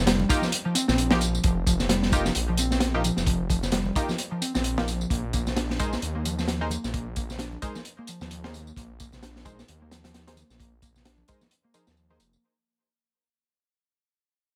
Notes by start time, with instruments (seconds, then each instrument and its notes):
Already playing: detuned saw bass F1
0.07 picked electric bass G3, snare, closed hi-hat, tambourine
0.20 high conga
0.29 synth stab A#3 D#4 F4 G4, picked electric bass D#4, kick, closed hi-hat, tambourine
0.42 picked electric bass F3, snare, tambourine, high conga
0.52 closed hi-hat, tambourine
0.65 picked electric bass F3
0.75 picked electric bass C4, closed hi-hat, tambourine
0.88 detuned saw bass A#1, picked electric bass C4, snare, tambourine, high conga
0.98 closed hi-hat, tambourine
1.11 picked electric bass F3, synth stab A#3 D#4 F4 G4, snare, high conga
1.21 closed hi-hat, tambourine
1.35 tambourine
1.44 detuned saw bass F1, picked electric bass F3, kick, closed hi-hat, tambourine
1.67 picked electric bass F3, kick, closed hi-hat, tambourine
1.79 snare, tambourine, low conga
1.89 picked electric bass G3, snare, closed hi-hat, tambourine
2.03 snare
2.12 synth stab A#3 D#4 F4 G4, picked electric bass D#4, kick, closed hi-hat, tambourine
2.25 picked electric bass F3, snare, tambourine
2.35 detuned saw bass A#1, closed hi-hat, tambourine
2.49 picked electric bass F3
2.57 picked electric bass C4, closed hi-hat, tambourine
2.71 picked electric bass C4, snare, tambourine
2.80 snare, closed hi-hat, tambourine
2.94 picked electric bass F3, synth stab A#3 D#4 F4 G4
3.04 closed hi-hat, tambourine, high conga
3.16 detuned saw bass F1, snare, tambourine
3.26 picked electric bass F3, kick, closed hi-hat, tambourine
3.50 picked electric bass F3, kick, closed hi-hat, tambourine
3.63 snare, tambourine, low conga
3.72 picked electric bass G3, snare, closed hi-hat, tambourine
3.85 high conga
3.96 synth stab A#3 D#4 F4 G4, picked electric bass D#4, kick, closed hi-hat, tambourine
4.09 picked electric bass F3, snare, tambourine, high conga
4.18 closed hi-hat, tambourine
4.31 picked electric bass F3
4.41 picked electric bass C4, closed hi-hat, tambourine
4.55 detuned saw bass A#1, picked electric bass C4, snare, tambourine, high conga
4.64 closed hi-hat, tambourine
4.77 picked electric bass F3, synth stab A#3 D#4 F4 G4, snare, high conga
4.88 closed hi-hat, tambourine
5.01 tambourine
5.10 detuned saw bass A#1, picked electric bass A#3, kick, closed hi-hat, tambourine
5.33 picked electric bass A#3, kick, closed hi-hat, tambourine
5.47 snare, tambourine, low conga
5.56 picked electric bass D4, snare, closed hi-hat, tambourine
5.70 snare
5.79 picked electric bass G#3, synth stab D#4 G#4 A#4 C5, kick, closed hi-hat, tambourine
5.92 picked electric bass A#3, snare, tambourine
6.02 detuned saw bass D#2, closed hi-hat, tambourine
6.15 picked electric bass A#3
6.25 picked electric bass F3, closed hi-hat, tambourine
6.38 picked electric bass F3, snare, tambourine
6.48 snare, closed hi-hat, tambourine
6.61 picked electric bass A#3, synth stab D#4 G#4 A#4 C5
6.70 closed hi-hat, tambourine, high conga
6.84 detuned saw bass A#1, snare, tambourine
6.94 picked electric bass A#3, kick, closed hi-hat, tambourine
7.16 picked electric bass A#3, kick, closed hi-hat, tambourine
7.29 snare, tambourine, low conga
7.39 picked electric bass D4, snare, closed hi-hat, tambourine
7.52 high conga
7.62 picked electric bass G#3, synth stab D#4 G#4 A#4 C5, kick, closed hi-hat, tambourine
7.75 picked electric bass A#3, snare, tambourine, high conga
7.85 closed hi-hat, tambourine
7.99 picked electric bass A#3
8.07 picked electric bass F3, closed hi-hat, tambourine
8.20 detuned saw bass D#2, picked electric bass F3, snare, tambourine, high conga
8.31 closed hi-hat, tambourine
8.43 picked electric bass A#3, synth stab D#4 G#4 A#4 C5, snare, high conga
8.54 closed hi-hat, tambourine
8.67 tambourine
8.76 detuned saw bass A#1, picked electric bass A#3, kick, closed hi-hat, tambourine
9.00 picked electric bass A#3, kick, closed hi-hat, tambourine
9.12 snare, tambourine, low conga
9.23 picked electric bass D4, snare, closed hi-hat, tambourine
9.36 snare
9.45 picked electric bass G#3, synth stab D#4 G#4 A#4 C5, kick, closed hi-hat, tambourine
9.59 picked electric bass A#3, snare, tambourine
9.68 detuned saw bass D#2, closed hi-hat, tambourine
9.82 picked electric bass A#3
9.91 picked electric bass F3, snare, closed hi-hat, tambourine
10.04 picked electric bass F3, snare, closed hi-hat, tambourine
10.14 snare, closed hi-hat, tambourine
10.27 picked electric bass A#3, synth stab D#4 G#4 A#4 C5, snare, closed hi-hat
10.36 closed hi-hat, tambourine, high conga
10.50 detuned saw bass A#1, snare, tambourine
10.60 picked electric bass A#3, kick, closed hi-hat, tambourine
10.82 picked electric bass A#3, kick, closed hi-hat, tambourine
10.95 snare, tambourine, low conga
11.05 picked electric bass D4, snare, closed hi-hat, tambourine
11.18 high conga
11.28 picked electric bass G#3, synth stab D#4 G#4 A#4 C5, kick, closed hi-hat, tambourine
11.41 picked electric bass A#3, snare, tambourine, high conga
11.51 closed hi-hat, tambourine
11.64 picked electric bass A#3
11.74 picked electric bass F3, synth stab D#4 G#4 A#4 C5, closed hi-hat, tambourine
11.87 detuned saw bass D#2, picked electric bass F3, snare, tambourine, high conga
11.97 tambourine
12.10 picked electric bass A#3, synth stab D#4 G#4 A#4 C5, high conga
12.20 detuned saw bass F1, closed hi-hat, tambourine
12.33 tambourine